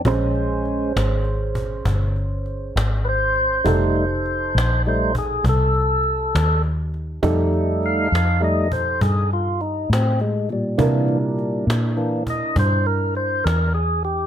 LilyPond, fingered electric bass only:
\new Staff \with { instrumentName = "Fingered electric bass" } { \clef bass \time 12/8 \key f \mixolydian \tempo 4. = 67 bes,,4. aes,,4. g,,4. aes,,4. | f,,4. bes,,4. c,4. ees,4. | f,4. f,4. g,4. a,4. | c4. bes,4. g,4. e,4. | }